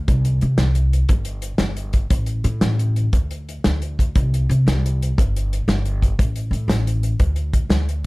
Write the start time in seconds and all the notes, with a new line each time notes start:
0.08 C2, kick, closed hi-hat
0.25 closed hi-hat
0.41 C3, closed hi-hat
0.58 C2, snare, closed hi-hat
0.75 closed hi-hat
0.93 closed hi-hat
1.09 G1, kick, closed hi-hat
1.25 closed hi-hat
1.42 closed hi-hat
1.58 G1, snare, closed hi-hat
1.77 closed hi-hat
1.93 kick, closed hi-hat
2.10 A1, kick, closed hi-hat
2.26 closed hi-hat
2.44 A2, closed hi-hat
2.61 A1, snare, closed hi-hat
2.79 closed hi-hat
2.96 closed hi-hat
3.13 D2, kick, closed hi-hat
3.31 closed hi-hat
3.49 closed hi-hat
3.64 D2, snare, closed hi-hat
3.82 closed hi-hat
3.99 kick, closed hi-hat
4.16 C2, kick, closed hi-hat
4.34 closed hi-hat
4.49 C3, closed hi-hat
4.67 C2, snare, closed hi-hat
4.86 closed hi-hat
5.02 closed hi-hat
5.18 G1, kick, closed hi-hat
5.36 closed hi-hat
5.53 closed hi-hat
5.68 G1, snare, closed hi-hat
5.85 closed hi-hat
6.02 kick, closed hi-hat
6.19 A1, kick, closed hi-hat
6.36 closed hi-hat
6.51 A2, closed hi-hat
6.68 A1, snare, closed hi-hat
6.87 closed hi-hat
7.03 closed hi-hat
7.20 D2, kick, closed hi-hat
7.36 closed hi-hat
7.53 kick, closed hi-hat
7.69 D2, snare, closed hi-hat
7.89 closed hi-hat